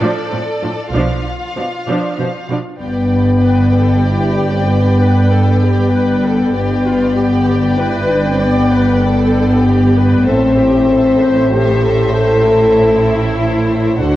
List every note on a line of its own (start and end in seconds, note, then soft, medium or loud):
0.00 0.08 A2 soft
0.00 0.29 F3 soft
0.00 0.29 D4 soft
0.00 0.90 A4 soft
0.00 0.90 D5 soft
0.32 0.40 A2 soft
0.32 0.40 F3 soft
0.32 0.40 C4 soft
0.62 0.71 A2 soft
0.62 0.70 F3 soft
0.62 0.70 D4 soft
0.93 1.22 B1 soft
0.93 1.03 B2 soft
0.93 1.22 F3 soft
0.93 1.22 D4 soft
0.93 2.57 F4 soft
0.93 2.57 F5 soft
1.56 1.65 B2 soft
1.56 1.64 F3 soft
1.56 1.64 D4 soft
1.87 1.96 B2 soft
1.87 2.16 F3 soft
1.87 2.16 D4 soft
2.18 2.27 B2 soft
2.18 2.26 F3 soft
2.18 2.26 C5 soft
2.50 2.58 B2 soft
2.50 2.58 F3 soft
2.50 2.58 D4 soft
2.80 6.50 G1 soft
2.80 6.49 G2 soft
2.80 4.01 B3 medium
2.80 6.50 B4 soft
2.80 6.50 D5 soft
2.80 6.49 G5 soft
3.43 3.72 B4 soft
3.74 4.04 A4 soft
4.06 4.36 E4 soft
4.06 4.66 G4 soft
4.38 4.52 D4 soft
4.52 4.67 C4 soft
4.68 5.28 B3 medium
4.68 4.98 G4 soft
4.99 5.29 B4 soft
5.30 6.52 B3 medium
5.30 5.61 A4 soft
5.62 5.92 G4 soft
5.92 6.22 B4 soft
6.24 6.55 A4 soft
6.54 10.23 G1 soft
6.54 10.23 G2 soft
6.54 7.76 B3 medium
6.54 6.85 G4 soft
6.54 10.23 B4 soft
6.54 10.23 D5 soft
6.54 10.23 G5 soft
6.87 7.17 F4 soft
7.17 7.77 G4 soft
7.78 8.09 E4 medium
7.78 8.40 B4 soft
8.10 8.25 D4 soft
8.27 8.41 C4 soft
8.41 9.02 B3 medium
8.41 8.71 D5 soft
8.72 9.03 B4 soft
9.03 10.25 B3 medium
9.03 9.65 A4 medium
9.65 9.96 G4 soft
9.97 10.27 B4 soft
10.27 14.01 A1 soft
10.27 14.00 A2 soft
10.27 11.52 C4 medium
10.27 13.96 A4 soft
10.27 10.58 A4 soft
10.27 13.96 C5 soft
10.27 13.96 E5 soft
10.58 10.89 G4 soft
10.89 11.20 A4 soft
11.20 11.51 C5 soft
11.52 12.14 G4 medium
11.52 11.83 C5 soft
11.84 12.14 A4 soft
12.14 13.21 A4 medium
12.14 12.44 C5 soft
12.45 14.00 E4 medium
13.38 13.99 E4 medium
13.99 14.16 D2 soft
13.99 14.16 D3 soft
13.99 14.16 D4 medium
13.99 14.16 F#4 soft
13.99 14.16 A4 soft
13.99 14.16 C5 soft
13.99 14.16 F#5 soft